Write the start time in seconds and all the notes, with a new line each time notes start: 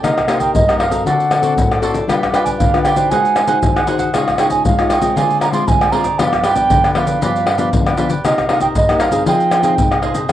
0.03 C3 A#3 D#4 G4 A#4 C5 D#5, pandeiro, tamborim, maracas, surdo
0.18 pandeiro, tamborim, maracas, surdo
0.28 A#3 D#4 G4 A#4 C5 D#5 F5, pandeiro, tamborim, maracas
0.39 A#4 C5 D#5 G5, pandeiro, maracas, surdo
0.54 G2 D#5, pandeiro, maracas, surdo
0.68 A#3 D#4 G4 A#4 C5 D#5, pandeiro, tamborim, maracas
0.79 D#4 A#4 C5 D#5 F5, pandeiro, tamborim
0.90 C4 F#4 A4 A#4 C5 D#5, pandeiro, maracas, surdo
1.05 D3 F#4 A4 C5 D5 F#5, pandeiro, maracas, surdo
1.20 pandeiro, maracas
1.31 F#4 A4 C5 D5, pandeiro, tamborim, maracas
1.42 C4 F#4 A4 C5 D5, pandeiro, maracas
1.56 A2, pandeiro, maracas, surdo
1.71 A4 C5 D5, pandeiro, tamborim, maracas
1.81 C4 F#4 A4 C5 D5, pandeiro, maracas
1.94 A4 C5 D5, pandeiro, maracas, surdo
2.08 G3 D4 F4 G4 B4 D5 F5, pandeiro, tamborim, maracas, surdo
2.23 pandeiro, tamborim, maracas, surdo
2.32 D4 F4 G4 B4 D5 G5, pandeiro, tamborim, maracas
2.44 G4 B4 D5 G#5, pandeiro, maracas, surdo
2.58 D3 F5, pandeiro, maracas, surdo
2.73 D4 F4 G4 B4 D5, pandeiro, tamborim, maracas
2.83 F4 G4 B4 D5 G5, pandeiro, tamborim, maracas
2.96 D#4 F#4 G4 B4 C5 D5, pandeiro, maracas, surdo
3.10 G#3 D#4 G#4 C5 F#5 G#5, pandeiro, maracas, surdo
3.25 pandeiro, maracas
3.36 D#4 G#4 C5 F#5, pandeiro, tamborim, maracas
3.47 D#4 F#4 G#4 C5 F#5, pandeiro, maracas
3.63 D#3, pandeiro, maracas, surdo
3.76 G#4 C5 F#5, pandeiro, tamborim, maracas
3.87 D#4 F#4 G#4 C5 F#5, pandeiro, maracas, surdo
3.99 G#4 C5 F#5, pandeiro, maracas, surdo
4.14 C#3 G#3 D#4 F4 G#4 C#5 D#5 F5, pandeiro, tamborim, maracas, surdo
4.28 pandeiro, tamborim, maracas, surdo
4.38 G#3 D#4 F4 G#4 C#5 D#5 G5, pandeiro, tamborim, maracas
4.49 G#4 C#5 D#5 G#5, pandeiro, maracas, surdo
4.65 G#3 F5, pandeiro, maracas, surdo
4.78 G#3 D#4 F4 G#4 C#5 D#5, pandeiro, tamborim, maracas
4.89 F4 G#4 C#5 D#5 G5, pandeiro, tamborim, maracas
5.02 G#3 C4 F4 G#4 C#5 D#5, pandeiro, maracas, surdo
5.16 D3 F4 G#4 C5 D5 G#5, pandeiro, maracas, surdo
5.30 pandeiro, maracas
5.41 F4 G#4 C5 D5 A#5, pandeiro, tamborim, maracas
5.52 G#3 C4 F4 G#4 C5 D5 C6, pandeiro, maracas
5.67 D3 G#5, pandeiro, maracas, surdo
5.81 G#4 C5 D5, pandeiro, tamborim, maracas
5.92 G#3 C4 F4 G#4 C5 D5 A#5, pandeiro, surdo
6.04 G#4 C5 D5, pandeiro, maracas, surdo
6.19 G2 F3 B3 D4 F4 G4 B4 D5 F5, pandeiro, tamborim, maracas, surdo
6.33 pandeiro, tamborim, maracas, surdo
6.44 F4 G4 B4 D5 G5, pandeiro, tamborim, maracas
6.55 F3 B3 D4 G4 B4 D5, pandeiro, maracas, surdo
6.70 D3, pandeiro, maracas, surdo
6.84 G4 B4 D5, pandeiro, tamborim, maracas
6.95 F3 B3 D4 F4 G4 B4 D5 F5, pandeiro, tamborim
7.07 G4 B4 D5, pandeiro, maracas, surdo
7.21 G2 F3 B3 D4 F4 G4 B4 D5, pandeiro, maracas, surdo
7.36 pandeiro, maracas
7.46 F4 G4 B4 D5, pandeiro, tamborim
7.58 F3 B3 D4 F4 G4 B4 D5, pandeiro, maracas
7.73 D3, pandeiro, maracas, surdo
7.86 G4 B4 D5, pandeiro, tamborim, maracas
7.97 F3 B3 D4 F4 G4 B4 D5, pandeiro, maracas
8.10 G4 B4 D5, pandeiro, maracas, surdo
8.24 C3 A#3 D#4 G4 A#4 C5 D#5, pandeiro, tamborim, maracas, surdo
8.38 pandeiro, tamborim, maracas, surdo
8.49 A#3 D#4 G4 A#4 C5 D#5 F5, pandeiro, tamborim
8.61 A#4 C5 D#5 G5, pandeiro, maracas, surdo
8.75 G2 D#5, pandeiro, maracas, surdo
8.89 A#3 D#4 G4 A#4 C5 D#5, pandeiro, tamborim, maracas
9.00 D#4 A#4 C5 D#5 F5, pandeiro, tamborim, maracas
9.12 C4 D#4 G#4 A#4 C5 D#5, pandeiro, maracas, surdo
9.26 F3 F4 G#4 C5 D#5 G5, pandeiro, maracas, surdo
9.40 pandeiro, maracas
9.51 F4 G#4 C5 D#5, pandeiro, tamborim, maracas
9.63 C4 D#4 F4 G#4 C5 D#5, pandeiro, maracas
9.77 C3, pandeiro, maracas, surdo
9.91 G#4 C5 D#5, pandeiro, tamborim, maracas
10.02 C4 D#4 F4 G#4 C5 D#5, pandeiro, surdo
10.14 G#4 C5 D#5, pandeiro, maracas, surdo
10.29 F4